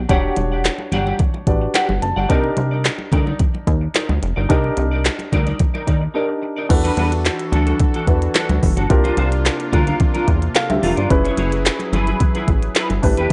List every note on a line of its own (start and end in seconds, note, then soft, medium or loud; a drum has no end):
0.09 0.31 E1 medium
0.09 1.44 D4 medium
0.09 1.44 F#4 medium
0.09 0.35 G4 medium
0.09 1.45 G4 medium
0.09 1.45 C#5 medium
0.09 0.35 D5 medium
0.09 0.36 F#5 loud
0.09 kick loud
0.09 closed hi-hat medium
0.09 muted conga soft
0.36 0.69 E1 loud
0.36 muted clean electric guitar stroke soft
0.36 closed hi-hat medium
0.36 high conga medium
0.52 0.63 G4 soft
0.52 0.63 D5 soft
0.52 0.63 F#5 medium
0.65 muted clean electric guitar stroke soft
0.65 snare medium
0.65 clap medium
0.65 closed hi-hat medium
0.65 muted conga soft
0.78 muted clean electric guitar stroke medium
0.78 muted conga soft
0.92 1.13 G1 medium
0.92 1.07 G4 medium
0.92 1.06 D5 medium
0.92 1.05 F#5 medium
0.92 closed hi-hat medium
0.92 high conga medium
0.92 low conga medium
1.06 1.18 G4 medium
1.06 1.18 D5 medium
1.06 1.17 F#5 medium
1.06 high conga medium
1.19 muted clean electric guitar stroke soft
1.19 kick loud
1.19 closed hi-hat medium
1.19 low conga medium
1.34 muted clean electric guitar stroke soft
1.34 muted conga soft
1.47 1.68 A1 medium
1.47 2.27 D4 medium
1.47 2.30 F#4 medium
1.47 2.29 G4 soft
1.47 2.30 B4 medium
1.47 1.73 D5 medium
1.47 kick medium
1.47 closed hi-hat medium
1.62 muted clean electric guitar stroke medium
1.74 1.90 G4 medium
1.74 1.89 D5 medium
1.74 2.00 F#5 medium
1.74 1.88 F#5 medium
1.74 snare loud
1.74 clap medium
1.74 closed hi-hat medium
1.74 muted conga soft
1.89 1.99 G1 loud
1.89 muted clean electric guitar stroke soft
1.89 muted conga soft
1.89 high conga medium
2.02 2.13 F#1 medium
2.02 2.28 A5 medium
2.02 muted clean electric guitar stroke soft
2.02 closed hi-hat medium
2.16 2.27 G1 medium
2.16 2.28 G4 medium
2.16 2.28 D5 medium
2.16 2.28 F#5 medium
2.29 2.51 C2 medium
2.29 4.45 D4 medium
2.29 2.55 D#4 medium
2.29 4.46 D#4 medium
2.29 4.46 G4 medium
2.29 2.55 A#4 medium
2.29 4.46 A#4 medium
2.29 2.56 D5 medium
2.29 kick loud
2.29 closed hi-hat medium
2.44 muted conga soft
2.57 2.89 C2 loud
2.57 muted clean electric guitar stroke soft
2.57 closed hi-hat medium
2.57 high conga medium
2.71 2.83 D#4 soft
2.71 2.83 A#4 soft
2.71 2.83 D5 soft
2.84 muted clean electric guitar stroke soft
2.84 snare medium
2.84 clap medium
2.84 closed hi-hat medium
2.84 muted conga soft
2.99 muted clean electric guitar stroke soft
2.99 muted conga soft
3.12 3.34 D2 medium
3.12 3.27 D#4 medium
3.12 3.26 A#4 medium
3.12 3.25 D5 medium
3.12 kick loud
3.12 closed hi-hat medium
3.12 high conga medium
3.12 low conga medium
3.26 3.38 D#4 medium
3.26 3.38 A#4 medium
3.26 3.38 D5 medium
3.26 high conga medium
3.39 muted clean electric guitar stroke soft
3.39 kick loud
3.39 closed hi-hat medium
3.39 muted conga soft
3.39 low conga medium
3.54 muted clean electric guitar stroke soft
3.54 muted conga soft
3.67 3.88 D#2 medium
3.67 kick medium
3.67 closed hi-hat medium
3.81 muted clean electric guitar stroke soft
3.94 4.10 D#4 medium
3.94 4.09 A#4 medium
3.94 4.08 D5 medium
3.94 snare loud
3.94 clap medium
3.94 closed hi-hat medium
3.94 muted conga soft
4.09 4.19 D2 medium
4.09 muted clean electric guitar stroke medium
4.09 muted conga soft
4.09 high conga medium
4.22 4.34 F1 loud
4.22 muted clean electric guitar stroke soft
4.22 closed hi-hat medium
4.36 4.47 G1 loud
4.36 4.48 D#4 medium
4.36 4.48 A#4 medium
4.36 4.48 D5 medium
4.49 4.71 C2 loud
4.49 6.11 D4 medium
4.49 4.75 D#4 medium
4.49 6.11 D#4 medium
4.49 6.12 G4 medium
4.49 4.76 A#4 medium
4.49 6.12 A#4 medium
4.49 4.76 D5 loud
4.49 kick loud
4.49 closed hi-hat loud
4.64 muted conga soft
4.77 5.09 C2 loud
4.77 muted clean electric guitar stroke soft
4.77 closed hi-hat medium
4.77 high conga medium
4.91 5.04 D#4 soft
4.91 5.03 A#4 medium
4.91 5.03 D5 medium
5.05 muted clean electric guitar stroke soft
5.05 snare medium
5.05 clap medium
5.05 closed hi-hat medium
5.05 muted conga soft
5.19 muted clean electric guitar stroke medium
5.19 closed hi-hat soft
5.19 muted conga soft
5.32 5.54 D2 medium
5.32 5.47 D#4 medium
5.32 5.46 A#4 medium
5.32 5.45 D5 loud
5.32 kick medium
5.32 closed hi-hat medium
5.32 high conga medium
5.32 low conga medium
5.46 5.58 D#4 medium
5.46 5.58 A#4 medium
5.46 5.58 D5 medium
5.46 closed hi-hat soft
5.46 high conga medium
5.59 muted clean electric guitar stroke soft
5.59 kick loud
5.59 closed hi-hat medium
5.59 low conga medium
5.74 5.86 D#4 medium
5.74 5.87 A#4 medium
5.74 5.88 D5 medium
5.74 muted conga soft
5.87 6.08 D#2 medium
5.87 6.00 D#4 medium
5.87 6.00 A#4 medium
5.87 6.01 D5 medium
5.87 kick medium
5.87 closed hi-hat medium
6.02 muted clean electric guitar stroke soft
6.14 6.68 D4 medium
6.14 6.30 D#4 medium
6.14 6.70 D#4 medium
6.14 6.70 G4 medium
6.14 6.29 A#4 medium
6.14 6.70 A#4 medium
6.14 6.28 D5 medium
6.29 muted clean electric guitar stroke soft
6.42 muted clean electric guitar stroke soft
6.56 6.69 D#4 medium
6.56 6.68 A#4 medium
6.56 6.68 D5 medium
6.69 6.91 E2 loud
6.69 8.88 E3 medium
6.69 8.04 D4 medium
6.69 8.88 D4 medium
6.69 8.05 F#4 medium
6.69 8.88 F#4 medium
6.69 8.05 A4 medium
6.69 8.88 A4 medium
6.69 8.05 B4 medium
6.69 muted clean electric guitar stroke medium
6.69 kick loud
6.69 closed hi-hat medium
6.69 crash medium
6.84 6.95 D4 medium
6.84 6.97 F#4 medium
6.84 6.97 B4 medium
6.84 closed hi-hat medium
6.84 muted conga soft
6.97 7.29 E2 loud
6.97 7.10 D4 medium
6.97 7.10 F#4 medium
6.97 7.10 B4 medium
6.97 closed hi-hat medium
6.97 high conga medium
7.11 muted clean electric guitar stroke soft
7.11 closed hi-hat medium
7.25 muted clean electric guitar stroke soft
7.25 snare medium
7.25 clap medium
7.25 closed hi-hat medium
7.39 muted clean electric guitar stroke soft
7.39 closed hi-hat soft
7.52 7.73 D2 medium
7.52 7.67 D4 medium
7.52 7.67 F#4 medium
7.52 7.65 A4 medium
7.52 closed hi-hat medium
7.52 high conga medium
7.52 low conga medium
7.67 7.79 D4 medium
7.67 7.79 F#4 medium
7.67 7.78 A4 medium
7.67 closed hi-hat soft
7.67 high conga medium
7.80 muted clean electric guitar stroke soft
7.80 kick loud
7.80 closed hi-hat medium
7.80 muted conga soft
7.80 low conga medium
7.94 8.06 D4 medium
7.94 8.07 F#4 medium
7.94 8.08 A4 medium
7.94 closed hi-hat soft
8.07 8.28 E2 medium
8.07 8.88 D4 medium
8.07 8.90 F#4 soft
8.07 8.90 A4 medium
8.07 8.90 B4 medium
8.07 muted clean electric guitar stroke soft
8.07 kick medium
8.07 closed hi-hat medium
8.22 muted clean electric guitar stroke soft
8.22 closed hi-hat medium
8.35 8.51 D4 medium
8.35 8.49 F#4 medium
8.35 8.48 A4 medium
8.35 snare loud
8.35 clap loud
8.35 closed hi-hat loud
8.35 muted conga soft
8.49 8.59 D2 loud
8.49 muted clean electric guitar stroke soft
8.49 closed hi-hat medium
8.49 muted conga soft
8.49 high conga medium
8.62 8.74 F#1 loud
8.62 muted clean electric guitar stroke medium
8.62 kick medium
8.62 open hi-hat medium
8.62 low conga medium
8.77 8.87 G1 medium
8.77 8.89 D4 medium
8.77 8.89 F#4 medium
8.77 8.88 A4 medium
8.77 closed hi-hat medium
8.90 9.11 C2 medium
8.90 11.08 C3 medium
8.90 11.08 A#3 medium
8.90 11.06 D4 medium
8.90 11.08 D4 medium
8.90 10.25 F4 medium
8.90 11.08 F4 medium
8.90 10.25 G4 medium
8.90 10.26 A#4 medium
8.90 muted clean electric guitar stroke soft
8.90 kick loud
8.90 closed hi-hat loud
8.90 muted conga soft
9.04 9.16 D4 medium
9.04 9.17 F4 medium
9.04 9.17 C5 medium
9.04 closed hi-hat medium
9.04 muted conga soft
9.17 9.50 C2 loud
9.17 9.30 D4 medium
9.17 9.30 F4 medium
9.17 9.31 C5 medium
9.17 closed hi-hat medium
9.17 high conga medium
9.31 muted clean electric guitar stroke soft
9.31 closed hi-hat medium
9.44 muted clean electric guitar stroke soft
9.44 snare loud
9.44 clap medium
9.44 closed hi-hat medium
9.44 muted conga soft
9.59 muted clean electric guitar stroke medium
9.59 closed hi-hat medium
9.72 9.94 D2 medium
9.72 9.87 D4 medium
9.72 9.86 F4 medium
9.72 9.85 A#4 medium
9.72 kick loud
9.72 closed hi-hat medium
9.72 high conga medium
9.72 low conga medium
9.86 9.99 D4 medium
9.86 9.98 F4 medium
9.86 9.98 A#4 medium
9.86 closed hi-hat soft
9.86 high conga medium
10.00 muted clean electric guitar stroke soft
10.00 kick loud
10.00 closed hi-hat medium
10.00 muted conga soft
10.00 low conga medium
10.14 10.26 D4 medium
10.14 10.27 F4 medium
10.14 10.27 A#4 medium
10.14 closed hi-hat soft
10.14 muted conga soft
10.27 10.49 E2 medium
10.27 muted clean electric guitar stroke soft
10.27 kick medium
10.27 closed hi-hat medium
10.42 muted clean electric guitar stroke soft
10.42 closed hi-hat soft
10.55 10.70 A4 medium
10.55 10.69 F5 medium
10.55 muted clean electric guitar stroke soft
10.55 snare loud
10.55 clap medium
10.55 closed hi-hat loud
10.55 muted conga soft
10.69 10.80 D2 loud
10.69 10.97 G4 medium
10.69 10.96 E5 medium
10.69 muted clean electric guitar stroke medium
10.69 closed hi-hat medium
10.69 muted conga soft
10.69 high conga medium
10.82 10.94 F1 loud
10.82 10.97 D4 medium
10.82 10.96 F4 loud
10.82 10.95 A#4 loud
10.82 open hi-hat medium
10.82 low conga medium
10.97 11.07 G1 medium
10.97 11.09 D4 medium
10.97 11.09 F4 medium
10.97 11.24 F4 medium
10.97 11.08 A#4 medium
10.97 11.24 D5 medium
10.97 closed hi-hat medium
11.10 11.31 F#1 loud
11.10 13.01 F#3 medium
11.10 12.99 C#4 medium
11.10 12.99 E4 medium
11.10 13.01 E4 medium
11.10 13.01 G#4 medium
11.10 12.99 G#4 medium
11.10 13.01 B4 medium
11.10 13.00 B4 medium
11.10 muted clean electric guitar stroke soft
11.10 kick loud
11.10 closed hi-hat medium
11.10 muted conga soft
11.24 11.36 E4 medium
11.24 11.37 G#4 medium
11.24 11.38 C#5 medium
11.24 closed hi-hat medium
11.24 muted conga soft
11.37 11.70 F#1 loud
11.37 11.50 E4 medium
11.37 11.51 G#4 medium
11.37 11.51 C#5 medium
11.37 closed hi-hat medium
11.37 high conga medium
11.52 muted clean electric guitar stroke soft
11.52 closed hi-hat medium
11.65 muted clean electric guitar stroke soft
11.65 snare loud
11.65 clap medium
11.65 closed hi-hat medium
11.80 muted clean electric guitar stroke soft
11.80 closed hi-hat medium
11.80 muted conga soft
11.93 12.14 G1 loud
11.93 12.08 E4 medium
11.93 12.07 G#4 loud
11.93 12.06 B4 loud
11.93 closed hi-hat medium
11.93 high conga medium
11.93 low conga medium
12.07 12.19 E4 medium
12.07 12.19 G#4 medium
12.07 12.18 B4 medium
12.07 closed hi-hat soft
12.07 high conga soft
12.20 muted clean electric guitar stroke soft
12.20 kick loud
12.20 closed hi-hat medium
12.20 low conga medium
12.35 12.47 E4 medium
12.35 12.47 G#4 medium
12.35 12.48 B4 medium
12.35 closed hi-hat soft
12.35 muted conga soft
12.48 12.69 A1 medium
12.48 muted clean electric guitar stroke medium
12.48 kick medium
12.48 closed hi-hat medium
12.62 muted clean electric guitar stroke soft
12.62 closed hi-hat soft
12.75 12.91 E4 medium
12.75 12.90 G#4 medium
12.75 12.89 B4 loud
12.75 snare loud
12.75 clap medium
12.75 closed hi-hat loud
12.90 13.00 G1 medium
12.90 muted clean electric guitar stroke soft
12.90 closed hi-hat medium
12.90 muted conga soft
12.90 high conga medium
13.02 13.14 A1 loud
13.02 13.33 A3 medium
13.02 13.33 D4 medium
13.02 13.33 E4 medium
13.02 13.33 G4 medium
13.02 13.33 B4 medium
13.02 muted clean electric guitar stroke medium
13.02 kick medium
13.02 open hi-hat medium
13.02 low conga medium
13.17 13.28 E1 medium
13.17 13.29 D4 medium
13.17 13.29 G4 medium
13.17 13.29 B4 medium
13.17 closed hi-hat medium